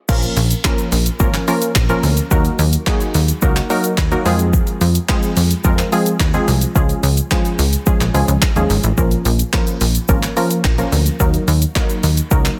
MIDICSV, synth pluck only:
0, 0, Header, 1, 2, 480
1, 0, Start_track
1, 0, Key_signature, -5, "minor"
1, 0, Tempo, 555556
1, 77, Time_signature, 4, 2, 24, 8
1, 10880, End_track
2, 0, Start_track
2, 0, Title_t, "Synth pluck"
2, 0, Program_c, 0, 84
2, 74, Note_on_c, 0, 53, 88
2, 76, Note_on_c, 0, 58, 78
2, 77, Note_on_c, 0, 61, 76
2, 78, Note_on_c, 0, 65, 77
2, 79, Note_on_c, 0, 70, 97
2, 323, Note_off_c, 0, 53, 0
2, 323, Note_off_c, 0, 58, 0
2, 324, Note_off_c, 0, 61, 0
2, 325, Note_off_c, 0, 65, 0
2, 325, Note_off_c, 0, 70, 0
2, 555, Note_on_c, 0, 53, 87
2, 557, Note_on_c, 0, 58, 80
2, 558, Note_on_c, 0, 61, 78
2, 559, Note_on_c, 0, 65, 76
2, 560, Note_on_c, 0, 70, 96
2, 803, Note_off_c, 0, 53, 0
2, 804, Note_off_c, 0, 58, 0
2, 804, Note_off_c, 0, 61, 0
2, 805, Note_off_c, 0, 65, 0
2, 805, Note_off_c, 0, 70, 0
2, 1035, Note_on_c, 0, 53, 94
2, 1037, Note_on_c, 0, 58, 85
2, 1038, Note_on_c, 0, 61, 84
2, 1038, Note_on_c, 0, 65, 85
2, 1039, Note_on_c, 0, 70, 101
2, 1159, Note_off_c, 0, 53, 0
2, 1160, Note_off_c, 0, 58, 0
2, 1161, Note_off_c, 0, 61, 0
2, 1161, Note_off_c, 0, 65, 0
2, 1162, Note_off_c, 0, 70, 0
2, 1275, Note_on_c, 0, 53, 88
2, 1277, Note_on_c, 0, 58, 84
2, 1278, Note_on_c, 0, 61, 81
2, 1279, Note_on_c, 0, 65, 84
2, 1280, Note_on_c, 0, 70, 101
2, 1461, Note_off_c, 0, 53, 0
2, 1462, Note_off_c, 0, 58, 0
2, 1463, Note_off_c, 0, 61, 0
2, 1463, Note_off_c, 0, 65, 0
2, 1464, Note_off_c, 0, 70, 0
2, 1635, Note_on_c, 0, 53, 94
2, 1636, Note_on_c, 0, 58, 83
2, 1638, Note_on_c, 0, 61, 82
2, 1638, Note_on_c, 0, 65, 84
2, 1639, Note_on_c, 0, 70, 102
2, 1821, Note_off_c, 0, 53, 0
2, 1822, Note_off_c, 0, 58, 0
2, 1823, Note_off_c, 0, 61, 0
2, 1823, Note_off_c, 0, 65, 0
2, 1824, Note_off_c, 0, 70, 0
2, 1996, Note_on_c, 0, 54, 85
2, 1997, Note_on_c, 0, 58, 82
2, 1998, Note_on_c, 0, 63, 79
2, 1999, Note_on_c, 0, 66, 77
2, 2000, Note_on_c, 0, 70, 96
2, 2243, Note_off_c, 0, 54, 0
2, 2244, Note_off_c, 0, 58, 0
2, 2245, Note_off_c, 0, 63, 0
2, 2245, Note_off_c, 0, 66, 0
2, 2246, Note_off_c, 0, 70, 0
2, 2475, Note_on_c, 0, 54, 85
2, 2476, Note_on_c, 0, 58, 82
2, 2477, Note_on_c, 0, 63, 80
2, 2478, Note_on_c, 0, 66, 78
2, 2479, Note_on_c, 0, 68, 94
2, 2723, Note_off_c, 0, 54, 0
2, 2723, Note_off_c, 0, 58, 0
2, 2724, Note_off_c, 0, 63, 0
2, 2725, Note_off_c, 0, 66, 0
2, 2725, Note_off_c, 0, 68, 0
2, 2955, Note_on_c, 0, 54, 87
2, 2956, Note_on_c, 0, 58, 87
2, 2957, Note_on_c, 0, 63, 84
2, 2958, Note_on_c, 0, 66, 82
2, 2959, Note_on_c, 0, 70, 99
2, 3080, Note_off_c, 0, 54, 0
2, 3080, Note_off_c, 0, 58, 0
2, 3081, Note_off_c, 0, 63, 0
2, 3081, Note_off_c, 0, 66, 0
2, 3082, Note_off_c, 0, 70, 0
2, 3196, Note_on_c, 0, 54, 88
2, 3196, Note_on_c, 0, 58, 82
2, 3197, Note_on_c, 0, 63, 84
2, 3199, Note_on_c, 0, 66, 84
2, 3199, Note_on_c, 0, 70, 104
2, 3382, Note_off_c, 0, 54, 0
2, 3382, Note_off_c, 0, 58, 0
2, 3383, Note_off_c, 0, 63, 0
2, 3383, Note_off_c, 0, 66, 0
2, 3383, Note_off_c, 0, 70, 0
2, 3554, Note_on_c, 0, 54, 93
2, 3556, Note_on_c, 0, 58, 82
2, 3556, Note_on_c, 0, 63, 84
2, 3558, Note_on_c, 0, 66, 79
2, 3559, Note_on_c, 0, 70, 105
2, 3675, Note_on_c, 0, 53, 98
2, 3676, Note_off_c, 0, 54, 0
2, 3676, Note_off_c, 0, 58, 0
2, 3676, Note_off_c, 0, 63, 0
2, 3676, Note_on_c, 0, 56, 91
2, 3677, Note_off_c, 0, 66, 0
2, 3678, Note_off_c, 0, 70, 0
2, 3678, Note_on_c, 0, 60, 89
2, 3678, Note_on_c, 0, 65, 91
2, 3679, Note_on_c, 0, 68, 108
2, 4252, Note_off_c, 0, 53, 0
2, 4252, Note_off_c, 0, 56, 0
2, 4253, Note_off_c, 0, 60, 0
2, 4253, Note_off_c, 0, 65, 0
2, 4254, Note_off_c, 0, 68, 0
2, 4395, Note_on_c, 0, 53, 85
2, 4396, Note_on_c, 0, 56, 83
2, 4397, Note_on_c, 0, 60, 82
2, 4398, Note_on_c, 0, 65, 79
2, 4399, Note_on_c, 0, 68, 99
2, 4643, Note_off_c, 0, 53, 0
2, 4644, Note_off_c, 0, 56, 0
2, 4644, Note_off_c, 0, 60, 0
2, 4645, Note_off_c, 0, 65, 0
2, 4645, Note_off_c, 0, 68, 0
2, 4876, Note_on_c, 0, 53, 93
2, 4877, Note_on_c, 0, 56, 84
2, 4878, Note_on_c, 0, 60, 83
2, 4880, Note_on_c, 0, 65, 83
2, 4881, Note_on_c, 0, 70, 102
2, 5000, Note_off_c, 0, 53, 0
2, 5000, Note_off_c, 0, 56, 0
2, 5001, Note_off_c, 0, 60, 0
2, 5002, Note_off_c, 0, 65, 0
2, 5002, Note_off_c, 0, 70, 0
2, 5117, Note_on_c, 0, 53, 90
2, 5118, Note_on_c, 0, 56, 85
2, 5119, Note_on_c, 0, 60, 82
2, 5120, Note_on_c, 0, 65, 83
2, 5121, Note_on_c, 0, 68, 98
2, 5302, Note_off_c, 0, 53, 0
2, 5303, Note_off_c, 0, 56, 0
2, 5303, Note_off_c, 0, 60, 0
2, 5304, Note_off_c, 0, 65, 0
2, 5304, Note_off_c, 0, 68, 0
2, 5476, Note_on_c, 0, 53, 89
2, 5477, Note_on_c, 0, 56, 83
2, 5478, Note_on_c, 0, 60, 85
2, 5479, Note_on_c, 0, 65, 79
2, 5480, Note_on_c, 0, 68, 103
2, 5662, Note_off_c, 0, 53, 0
2, 5662, Note_off_c, 0, 56, 0
2, 5663, Note_off_c, 0, 60, 0
2, 5663, Note_off_c, 0, 65, 0
2, 5664, Note_off_c, 0, 68, 0
2, 5835, Note_on_c, 0, 53, 85
2, 5836, Note_on_c, 0, 56, 76
2, 5838, Note_on_c, 0, 61, 79
2, 5839, Note_on_c, 0, 65, 82
2, 5840, Note_on_c, 0, 68, 99
2, 6083, Note_off_c, 0, 53, 0
2, 6084, Note_off_c, 0, 56, 0
2, 6084, Note_off_c, 0, 61, 0
2, 6085, Note_off_c, 0, 65, 0
2, 6085, Note_off_c, 0, 68, 0
2, 6315, Note_on_c, 0, 53, 85
2, 6316, Note_on_c, 0, 56, 79
2, 6317, Note_on_c, 0, 61, 76
2, 6318, Note_on_c, 0, 65, 80
2, 6319, Note_on_c, 0, 68, 96
2, 6563, Note_off_c, 0, 53, 0
2, 6564, Note_off_c, 0, 56, 0
2, 6564, Note_off_c, 0, 61, 0
2, 6564, Note_off_c, 0, 65, 0
2, 6565, Note_off_c, 0, 68, 0
2, 6795, Note_on_c, 0, 53, 91
2, 6796, Note_on_c, 0, 56, 85
2, 6797, Note_on_c, 0, 61, 80
2, 6798, Note_on_c, 0, 65, 80
2, 6799, Note_on_c, 0, 68, 101
2, 6919, Note_off_c, 0, 53, 0
2, 6920, Note_off_c, 0, 56, 0
2, 6920, Note_off_c, 0, 61, 0
2, 6921, Note_off_c, 0, 65, 0
2, 6922, Note_off_c, 0, 68, 0
2, 7035, Note_on_c, 0, 53, 89
2, 7036, Note_on_c, 0, 56, 82
2, 7036, Note_on_c, 0, 61, 83
2, 7038, Note_on_c, 0, 65, 81
2, 7039, Note_on_c, 0, 68, 97
2, 7221, Note_off_c, 0, 53, 0
2, 7222, Note_off_c, 0, 56, 0
2, 7222, Note_off_c, 0, 61, 0
2, 7223, Note_off_c, 0, 65, 0
2, 7223, Note_off_c, 0, 68, 0
2, 7395, Note_on_c, 0, 53, 91
2, 7397, Note_on_c, 0, 56, 83
2, 7397, Note_on_c, 0, 61, 83
2, 7398, Note_on_c, 0, 65, 81
2, 7399, Note_on_c, 0, 68, 100
2, 7581, Note_off_c, 0, 53, 0
2, 7582, Note_off_c, 0, 56, 0
2, 7583, Note_off_c, 0, 61, 0
2, 7583, Note_off_c, 0, 65, 0
2, 7583, Note_off_c, 0, 68, 0
2, 7755, Note_on_c, 0, 53, 84
2, 7756, Note_on_c, 0, 58, 78
2, 7757, Note_on_c, 0, 61, 82
2, 7758, Note_on_c, 0, 65, 77
2, 7759, Note_on_c, 0, 70, 94
2, 8003, Note_off_c, 0, 53, 0
2, 8003, Note_off_c, 0, 58, 0
2, 8004, Note_off_c, 0, 61, 0
2, 8005, Note_off_c, 0, 65, 0
2, 8005, Note_off_c, 0, 70, 0
2, 8236, Note_on_c, 0, 53, 86
2, 8236, Note_on_c, 0, 58, 79
2, 8238, Note_on_c, 0, 61, 76
2, 8239, Note_on_c, 0, 65, 84
2, 8240, Note_on_c, 0, 70, 96
2, 8483, Note_off_c, 0, 53, 0
2, 8484, Note_off_c, 0, 58, 0
2, 8484, Note_off_c, 0, 61, 0
2, 8485, Note_off_c, 0, 65, 0
2, 8486, Note_off_c, 0, 70, 0
2, 8715, Note_on_c, 0, 53, 92
2, 8716, Note_on_c, 0, 58, 85
2, 8717, Note_on_c, 0, 61, 88
2, 8718, Note_on_c, 0, 65, 85
2, 8720, Note_on_c, 0, 70, 101
2, 8840, Note_off_c, 0, 53, 0
2, 8840, Note_off_c, 0, 58, 0
2, 8841, Note_off_c, 0, 61, 0
2, 8841, Note_off_c, 0, 65, 0
2, 8842, Note_off_c, 0, 70, 0
2, 8955, Note_on_c, 0, 53, 93
2, 8956, Note_on_c, 0, 58, 81
2, 8957, Note_on_c, 0, 61, 81
2, 8959, Note_on_c, 0, 65, 85
2, 8959, Note_on_c, 0, 70, 100
2, 9141, Note_off_c, 0, 53, 0
2, 9142, Note_off_c, 0, 58, 0
2, 9142, Note_off_c, 0, 61, 0
2, 9143, Note_off_c, 0, 65, 0
2, 9143, Note_off_c, 0, 70, 0
2, 9316, Note_on_c, 0, 53, 87
2, 9317, Note_on_c, 0, 58, 83
2, 9318, Note_on_c, 0, 61, 82
2, 9319, Note_on_c, 0, 65, 86
2, 9320, Note_on_c, 0, 70, 101
2, 9502, Note_off_c, 0, 53, 0
2, 9502, Note_off_c, 0, 58, 0
2, 9503, Note_off_c, 0, 61, 0
2, 9503, Note_off_c, 0, 65, 0
2, 9504, Note_off_c, 0, 70, 0
2, 9675, Note_on_c, 0, 54, 89
2, 9676, Note_on_c, 0, 58, 76
2, 9677, Note_on_c, 0, 63, 75
2, 9678, Note_on_c, 0, 66, 80
2, 9679, Note_on_c, 0, 70, 93
2, 9923, Note_off_c, 0, 54, 0
2, 9924, Note_off_c, 0, 58, 0
2, 9924, Note_off_c, 0, 63, 0
2, 9925, Note_off_c, 0, 66, 0
2, 9925, Note_off_c, 0, 70, 0
2, 10155, Note_on_c, 0, 54, 87
2, 10156, Note_on_c, 0, 58, 81
2, 10157, Note_on_c, 0, 63, 76
2, 10158, Note_on_c, 0, 66, 80
2, 10159, Note_on_c, 0, 70, 94
2, 10403, Note_off_c, 0, 54, 0
2, 10404, Note_off_c, 0, 58, 0
2, 10404, Note_off_c, 0, 63, 0
2, 10405, Note_off_c, 0, 66, 0
2, 10405, Note_off_c, 0, 70, 0
2, 10635, Note_on_c, 0, 54, 90
2, 10636, Note_on_c, 0, 58, 84
2, 10637, Note_on_c, 0, 63, 83
2, 10638, Note_on_c, 0, 66, 82
2, 10640, Note_on_c, 0, 70, 102
2, 10759, Note_off_c, 0, 54, 0
2, 10760, Note_off_c, 0, 58, 0
2, 10760, Note_off_c, 0, 63, 0
2, 10761, Note_off_c, 0, 66, 0
2, 10762, Note_off_c, 0, 70, 0
2, 10880, End_track
0, 0, End_of_file